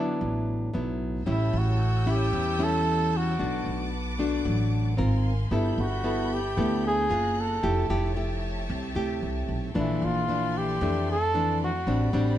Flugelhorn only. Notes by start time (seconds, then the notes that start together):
Already playing: D4
1.31 E4
1.58 F#4
2.11 G4
2.64 A4
3.17 F#4
5.55 E4
5.81 F#4
6.34 G4
6.87 G#4
7.41 A4
9.79 E4
10.05 F4
10.58 G4
11.11 A4
11.64 F#4